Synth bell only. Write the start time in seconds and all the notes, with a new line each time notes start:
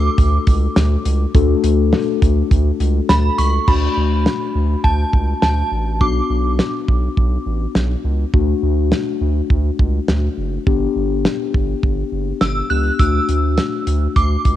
Already playing: D6
3.09 B5
3.38 C#6
3.68 B5
4.84 A5
5.42 A5
6.01 D6
12.41 E6
12.70 F#6
12.99 E6
14.16 D6